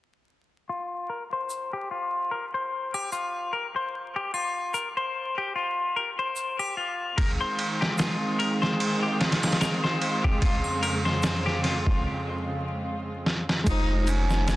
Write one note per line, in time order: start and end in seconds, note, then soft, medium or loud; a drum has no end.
0.69 1.08 F4 medium
1.10 1.23 A#4 medium
1.33 1.71 C5 medium
1.50 shaker medium
1.73 1.89 G4 medium
1.91 2.30 F4 medium
2.31 2.44 A#4 medium
2.54 2.92 C5 medium
2.94 3.10 G4 medium
2.94 triangle medium
3.12 3.51 F4 medium
3.12 shaker medium
3.53 3.66 A#4 medium
3.76 3.94 C5 medium
4.16 4.32 G4 medium
4.34 4.73 F4 medium
4.34 triangle medium
4.74 4.87 A#4 medium
4.74 shaker medium
4.97 5.36 C5 medium
5.38 5.54 G4 medium
5.55 5.94 F4 medium
5.96 6.09 A#4 medium
6.19 6.57 C5 medium
6.36 shaker medium
6.59 6.75 G4 medium
6.59 triangle medium
6.77 7.16 F4 medium
7.17 10.39 D#3 medium
7.17 13.62 G#3 medium
7.17 13.62 C4 medium
7.17 13.62 F4 medium
7.17 7.31 A#4 medium
7.17 kick loud
7.17 ride medium
7.41 7.79 C5 medium
7.59 ride medium
7.81 7.97 G4 medium
7.81 snare medium
7.98 8.38 F4 medium
7.98 snare loud
7.98 ride medium
7.98 shaker medium
8.39 8.52 A#4 medium
8.39 ride medium
8.62 9.00 C5 medium
8.62 snare soft
8.80 ride medium
9.03 9.19 G4 loud
9.20 9.59 F4 medium
9.20 snare medium
9.20 ride medium
9.32 snare medium
9.32 ride medium
9.43 snare medium
9.43 ride medium
9.43 triangle medium
9.52 snare medium
9.52 ride medium
9.61 9.74 A#4 medium
9.61 snare loud
9.61 ride medium
9.61 shaker medium
9.84 10.22 C5 medium
9.84 snare soft
10.02 ride medium
10.24 10.40 G4 medium
10.24 kick medium
10.42 13.63 F2 medium
10.42 13.63 C#3 medium
10.42 10.81 F4 medium
10.42 kick loud
10.42 ride medium
10.64 triangle soft
10.83 10.96 A#4 medium
10.83 ride medium
10.83 triangle medium
11.05 11.44 C5 medium
11.05 snare soft
11.23 snare loud
11.23 ride medium
11.23 shaker medium
11.46 11.62 G4 loud
11.46 snare soft
11.63 12.02 F4 medium
11.63 snare soft
11.63 ride medium
11.87 kick medium
13.26 snare medium
13.49 snare medium
13.64 14.56 F1 medium
13.64 14.56 G#3 medium
13.64 14.56 D#4 medium
13.64 kick loud
13.64 ride medium
13.64 shaker soft
13.68 13.99 D#4 loud
13.68 14.56 F4 medium
13.68 14.56 C5 medium
14.03 14.10 D#4 medium
14.07 14.56 C#4 loud
14.07 ride medium
14.07 shaker medium
14.30 snare medium
14.30 shaker soft
14.48 snare loud
14.48 ride medium
14.48 shaker soft